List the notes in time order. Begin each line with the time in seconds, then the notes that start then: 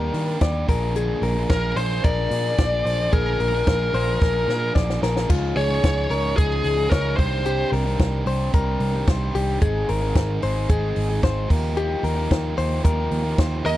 Already playing: G3 A#3 D4 G4 A#4
0.14 D#3 G3 A#3 D4 G4, open hi-hat
0.41 D#2 D5, kick, snare, closed hi-hat
0.68 A#1 F3 A#3 D4 G#4 A#4, kick, open hi-hat
0.96 A#2 D3 F3 A#3 D4 G#4, closed hi-hat
1.22 A#1 A#4, open hi-hat
1.36 F3 A#3 D4 G#4
1.49 A#1 A#4, kick, snare, closed hi-hat
1.76 A#1 F3 A#3 D4 G#4 C5, open hi-hat
2.03 A#1 F3 A#3 D4 G#4 A#4 D5, kick, closed hi-hat
2.30 A#2 F3 A#3 D4 G#4, open hi-hat
2.58 A#1 D5, kick, snare, closed hi-hat
2.85 A#1 F3 A#3 D4 G#4 C5, open hi-hat
3.12 A#1 A#2 D3 F3 A#3 D4 G#4 A#4, kick, closed hi-hat
3.40 A#1 A#4, open hi-hat
3.52 F3 A#3 D4 G#4
3.67 A#1, kick, snare, closed hi-hat
3.93 A#1 F3 A#3 D4 G#4 C5, open hi-hat
4.19 A#1 F3 A#3 D4 G#4 A#4, kick, snare
4.47 A#2 F3 A#3 D4 G#4, snare
4.75 A#1 D5, kick, snare
4.90 snare
5.01 A#1 F3 A#3 D4 G#4 A#4, snare
5.16 snare
5.27 C#2 F3 C#4 D#4 F4 G#4, kick, crash
5.56 C#2 G#4 C#5, open hi-hat
5.69 C#3 F3 C#4 D#4 G#4
5.83 C#2, kick, snare, closed hi-hat
6.09 C#2 F3 C#4 D#4 G#4 A#4, open hi-hat
6.36 C#2 F3 C#4 D#4 G#4, kick, closed hi-hat
6.64 C#2, open hi-hat
6.77 C#3 F3 C#4 D#4 G#4
6.90 C#2 A#4 C#5, kick, snare, closed hi-hat
7.17 C2 C3 D#3 G3 C4 D4 G4 C5, kick, open hi-hat
7.45 G3 C4 D4 G4, closed hi-hat
7.72 C2 A#4, open hi-hat
7.85 C3 D#3 G3 C4 D4 G4
7.99 C2, kick, snare, closed hi-hat
8.26 C2 G3 C4 D4 G4 C5, open hi-hat
8.53 C2 G3 C4 D4 G4 A#4, kick, closed hi-hat
8.80 C2, open hi-hat
8.93 C3 D#3 G3 C4 D4 G4
9.07 C2 C5, kick, snare, closed hi-hat
9.34 C2 C3 D#3 G3 C4 D4 G4, open hi-hat
9.60 G#1 G#3 C4 D#4 G#4, kick, closed hi-hat
9.89 G#1 A#4, open hi-hat
10.02 G#2 D#3 G#3 C4 D#4 G#4
10.15 G#1, kick, snare, closed hi-hat
10.41 G#1 G#3 C4 D#4 G#4 C5, open hi-hat
10.69 G#1 G#3 C4 D#4 G#4, kick, closed hi-hat
10.96 G#1, open hi-hat
11.09 G#2 D#3 G#3 C4 D#4 G#4
11.23 G#1 C5, kick, snare, closed hi-hat
11.48 D#2 D#3 F3 A#3 D#4 G4 A#4, kick, open hi-hat
11.76 F3 A#3 D#4 G4, closed hi-hat
12.03 D#2 A#4, open hi-hat
12.16 D#3 F3 A#3 D#4 G4
12.31 D#2, kick, snare, closed hi-hat
12.57 D#2 F3 A#3 D#4 G4 C5, open hi-hat
12.83 D#2 F3 A#3 D#4 G4 A#4, kick, closed hi-hat
13.11 D#2, open hi-hat
13.23 D#3 F3 A#3 D#4 G4
13.38 D#2 C5, kick, snare, closed hi-hat
13.64 D#2 D#3 F3 A#3 D#4 G4 A#4 D#5, open hi-hat